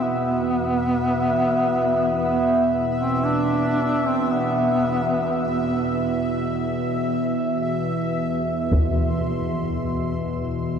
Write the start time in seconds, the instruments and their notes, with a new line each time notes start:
Already playing: synth drone E2 B2, synth texture E5
0.04 duduk B3
2.18 duduk B3
2.98 duduk C4
3.25 duduk D4
4.07 duduk C4
4.33 duduk B3
8.71 synth texture C6, taiko